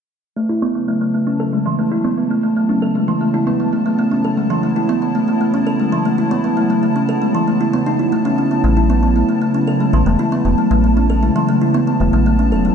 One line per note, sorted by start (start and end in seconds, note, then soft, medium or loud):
0.36 12.75 C#3 medium
0.36 0.41 A3 medium
0.49 0.61 E4 medium
0.62 12.75 F#3 medium
0.62 0.70 B3 loud
0.68 12.75 B3 medium
0.75 0.83 B3 medium
0.88 0.96 A3 medium
1.01 1.09 A3 medium
1.09 12.75 A5 medium
1.14 1.26 A3 medium
1.27 1.39 C#4 medium
1.34 12.75 E4 medium
1.40 1.48 A4 medium
1.53 1.58 G#3 medium
1.66 1.74 E3 loud
1.79 1.83 A3 medium
1.92 2.03 E4 medium
2.04 2.12 B3 medium
2.17 2.25 B3 medium
2.30 2.38 A3 medium
2.43 2.51 A3 medium
2.56 2.68 A3 medium
2.69 2.81 C#4 medium
2.82 2.90 A4 medium
2.95 3.00 G#3 medium
3.08 3.16 E3 medium
3.21 3.26 A3 medium
3.34 3.46 E4 medium
3.47 3.55 B3 loud
3.60 3.68 B3 medium
3.73 3.81 A3 medium
3.86 3.94 A3 medium
3.99 4.10 A3 medium
4.11 4.23 C#4 medium
4.24 4.32 A4 medium
4.37 4.42 G#3 medium
4.50 4.58 E3 loud
4.63 4.68 A3 medium
4.76 4.88 E4 medium
4.89 4.97 B3 loud
5.02 5.10 B3 medium
5.15 5.23 A3 medium
5.28 5.36 A3 medium
5.41 5.53 A3 medium
5.54 5.66 C#4 medium
5.67 5.75 A4 medium
5.80 5.84 G#3 medium
5.92 6.00 E3 loud
6.05 6.10 A3 medium
6.18 6.30 E4 medium
6.31 6.39 B3 loud
6.44 6.52 B3 medium
6.57 6.65 A3 medium
6.70 6.78 A3 medium
6.83 6.95 A3 medium
6.96 7.08 C#4 medium
7.09 7.17 A4 medium
7.22 7.26 G#3 medium
7.35 7.43 E3 loud
7.48 7.52 A3 medium
7.61 7.73 E4 medium
7.73 7.81 B3 loud
7.86 7.98 D#4 medium
7.99 8.07 E4 medium
8.12 8.17 A3 medium
8.25 8.33 C#4 loud
8.38 8.43 C#4 medium
8.51 8.59 B3 medium
8.64 9.24 A1 loud
8.64 8.69 A3 medium
8.77 8.89 E4 medium
8.90 8.98 B3 loud
9.03 9.11 B3 medium
9.16 9.24 A3 medium
9.29 9.37 A3 medium
9.42 9.54 A3 medium
9.54 9.66 C#4 medium
9.67 9.75 A4 medium
9.80 9.85 G#3 medium
9.93 10.03 A1 medium
9.93 10.01 E3 loud
10.06 10.16 E1 loud
10.06 10.11 A3 medium
10.19 10.31 E4 medium
10.32 10.40 B3 loud
10.45 10.55 E1 medium
10.45 10.53 B3 medium
10.58 10.66 A3 medium
10.71 11.30 A1 loud
10.71 10.79 A3 medium
10.84 10.96 A3 medium
10.97 11.09 C#4 medium
11.10 11.18 A4 medium
11.23 11.27 G#3 medium
11.36 11.44 E3 loud
11.49 11.53 A3 medium
11.61 11.73 E4 medium
11.74 11.82 B3 loud
11.87 11.95 B3 medium
12.00 12.10 E1 medium
12.00 12.08 A3 medium
12.13 12.53 A1 medium
12.13 12.21 A3 medium
12.26 12.38 A3 medium
12.39 12.51 C#4 medium
12.52 12.71 E1 medium
12.52 12.60 A4 medium
12.65 12.70 G#3 medium